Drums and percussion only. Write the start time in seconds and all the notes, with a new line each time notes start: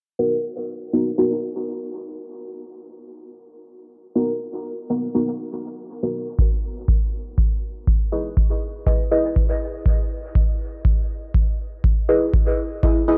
6.39 kick
6.88 kick
7.38 kick
7.87 kick
8.37 kick
8.87 kick
9.36 kick
9.86 kick
10.35 kick
10.85 kick
11.34 kick
11.84 kick
12.34 kick
12.83 kick